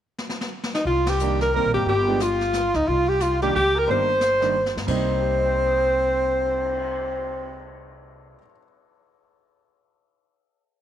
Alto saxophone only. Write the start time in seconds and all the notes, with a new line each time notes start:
0.74 D#4
0.86 F4
1.09 G4
1.42 A#4
1.56 A#4
1.74 G4
1.88 G4
2.22 F4
2.76 D#4
2.88 F4
3.08 G4
3.22 F4
3.42 G4
3.56 G4
3.79 A#4
3.91 C5
4.88 C5